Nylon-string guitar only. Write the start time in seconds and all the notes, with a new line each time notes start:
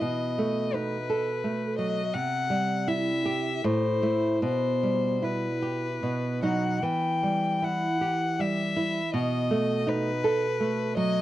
0.01 B2
0.38 A3
0.74 D#4
1.10 A4
1.44 A3
1.79 F#3
2.15 C3
2.50 G3
2.88 E4
3.25 G4
3.64 A2
4.02 A3 E4
4.42 B2
4.83 G3
5.22 E4
5.62 G4
6.03 B2
6.42 F#3 D#4
6.82 E3
7.23 G3
7.62 E4
8.01 G4
8.39 G3
8.76 E4
9.14 B2
9.51 A3
9.87 D#4
10.24 A4
10.60 A3
10.97 F#3